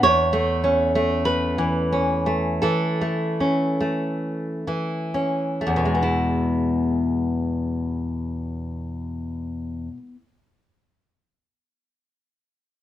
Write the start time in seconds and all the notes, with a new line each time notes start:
0.03 E2 C#5
0.33 A3
0.64 C#4
0.95 A3
1.25 B4
1.58 E3
1.93 C#4
2.26 A3
2.62 E3 A4
3.01 A3
3.40 C#4
3.81 A3
4.67 E3
5.14 C#4
5.61 A3
5.67 E2
5.76 B2
5.85 G#3
5.95 B3
6.03 E4